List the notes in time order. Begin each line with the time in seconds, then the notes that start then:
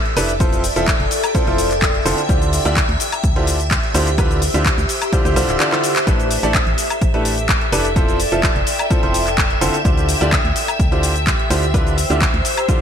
Already playing: A4 D5 E5 G5
0.05 closed hi-hat
0.16 F1 D4 E4 G4 A4 B4, open hi-hat, shaker
0.29 closed hi-hat, shaker
0.40 F3 C4 E4 F4 A4 C5, kick, closed hi-hat, shaker
0.53 closed hi-hat, shaker
0.64 open hi-hat, shaker
0.76 F1 F3 C4 E4 F4 A4 E5, closed hi-hat, shaker
0.87 kick, clap, closed hi-hat, shaker
1.00 F1, closed hi-hat
1.11 open hi-hat, shaker
1.24 closed hi-hat, high woodblock, shaker
1.35 F3 C4 E4 F4 A4 C5, kick, closed hi-hat, shaker
1.47 F1 F3 C4 E4 F4 A4 C5, closed hi-hat
1.58 open hi-hat, shaker
1.71 clap, closed hi-hat, shaker
1.82 kick, clap, closed hi-hat, shaker
1.95 closed hi-hat
2.05 F1 D3 C4 E4 F4 A4 C5, open hi-hat, shaker
2.18 closed hi-hat, shaker
2.29 D2 D3 D4 E4 F4 G4 C5, kick, closed hi-hat, shaker
2.42 closed hi-hat, shaker
2.53 open hi-hat, shaker
2.65 D2 D3 D4 E4 F4 G4 D5, closed hi-hat, shaker
2.76 kick, clap, closed hi-hat, shaker
2.89 D2, closed hi-hat
3.00 open hi-hat, shaker
3.12 C5, closed hi-hat, high woodblock, shaker
3.17 E5
3.24 D2, kick, closed hi-hat, shaker
3.36 D3 D4 E4 F4 G4 C5, closed hi-hat
3.47 open hi-hat, shaker
3.60 closed hi-hat, shaker
3.71 kick, clap, closed hi-hat, shaker
3.83 closed hi-hat
3.94 D2 D3 D4 E4 F4 G4 C5, open hi-hat, shaker
4.07 closed hi-hat, shaker
4.18 D3 D4 E4 F4 G4 B4, kick, closed hi-hat, high woodblock, shaker
4.31 closed hi-hat, shaker
4.42 open hi-hat, shaker
4.54 D2 D3 D4 E4 F4 G4 E5, closed hi-hat, shaker
4.65 kick, clap, closed hi-hat, shaker
4.78 D2, closed hi-hat, shaker
4.89 open hi-hat, shaker
5.02 closed hi-hat, high woodblock, shaker
5.13 D3 D4 E4 F4 G4 C5, kick, closed hi-hat, shaker
5.25 D2 D3 D4 E4 F4 G4 C5, closed hi-hat, shaker
5.36 C2 D3 D4 E4 F4 G4 C5, open hi-hat, shaker
5.48 D1, clap, closed hi-hat, shaker
5.60 D3 D4 E4 F4 G4 D5, clap, closed hi-hat, shaker
5.72 D3 D4 E4 F4 G4 C5, clap, closed hi-hat
5.84 open hi-hat, shaker
5.96 clap, closed hi-hat, shaker
6.07 A1 A3 D4 E4 G4 A4 B4 E5, kick, closed hi-hat, shaker
6.20 closed hi-hat, shaker
6.31 D5, open hi-hat, shaker
6.43 A1 A3 D4 E4 G4 A4 D5, closed hi-hat, shaker
6.54 kick, clap, closed hi-hat, shaker
6.67 A1, closed hi-hat
6.78 open hi-hat, shaker
6.90 G5, closed hi-hat, high woodblock, shaker
7.01 A1, kick, closed hi-hat, shaker
7.14 A3 D4 E4 G4 A4 B4, closed hi-hat
7.25 open hi-hat, shaker
7.38 closed hi-hat, shaker
7.49 kick, clap, closed hi-hat, shaker
7.61 closed hi-hat
7.72 F1 D4 E4 G4 A4 B4, open hi-hat, shaker
7.85 closed hi-hat, shaker
7.96 F3 C4 E4 F4 A4 C5, kick, closed hi-hat, shaker
8.08 closed hi-hat, shaker
8.20 open hi-hat, shaker
8.32 F1 F3 C4 E4 F4 A4 E5, closed hi-hat, shaker
8.43 kick, clap, closed hi-hat, shaker
8.56 F1, closed hi-hat
8.67 open hi-hat, shaker
8.79 closed hi-hat, high woodblock, shaker
8.90 F3 C4 E4 F4 A4 C5, kick, closed hi-hat, shaker
9.03 F1 F3 C4 E4 F4 A4 C5, closed hi-hat
9.14 open hi-hat, shaker
9.27 clap, closed hi-hat, shaker
9.38 kick, clap, closed hi-hat, shaker
9.50 closed hi-hat
9.61 F1 D3 C4 E4 F4 A4 C5, open hi-hat, shaker
9.74 closed hi-hat, shaker
9.85 D2 D3 D4 E4 F4 G4 C5, kick, closed hi-hat, shaker
9.97 closed hi-hat, shaker
10.09 open hi-hat, shaker
10.21 D2 D3 D4 E4 F4 G4 D5, closed hi-hat, shaker
10.31 C5, kick, clap, closed hi-hat, shaker
10.45 D2, closed hi-hat
10.56 open hi-hat, shaker
10.68 closed hi-hat, high woodblock, shaker
10.80 D2, kick, closed hi-hat, shaker
10.92 D3 D4 E4 F4 G4 C5, closed hi-hat
11.03 open hi-hat, shaker
11.16 E5, closed hi-hat, shaker
11.27 kick, clap, closed hi-hat, shaker
11.39 closed hi-hat
11.50 D2 D3 D4 E4 F4 G4 C5, open hi-hat, shaker
11.63 closed hi-hat, shaker
11.74 D3 D4 E4 F4 G4 B4, kick, closed hi-hat, shaker
11.87 closed hi-hat, shaker
11.98 open hi-hat, shaker
12.10 D2 D3 D4 E4 F4 G4 E5, closed hi-hat, shaker
12.21 kick, clap, closed hi-hat, shaker
12.34 D2, closed hi-hat
12.45 open hi-hat, shaker
12.57 closed hi-hat, high woodblock, shaker
12.69 D3 D4 E4 F4 G4 C5, kick, closed hi-hat, shaker